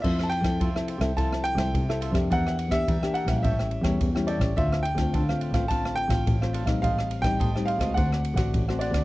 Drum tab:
CC |x---------------|----------------|----------------|----------------|
RD |--xxx-xxx-xxx-xx|x-xxx-xxx-xxx-xx|x-xxx-xxx-xxx-xx|x-xxx-xxx-xxx-xx|
SD |-r-r-r-r-r-r-r-r|-r-r-r-r-r-r-r-r|-r-r-r-r-r-r-r-r|-r-r-r-r-r-r-r-r|
BD |o--oo--oo--oo--o|o--oo--oo--oo--o|o--oo--oo--oo--o|o--oo--oo--oo--o|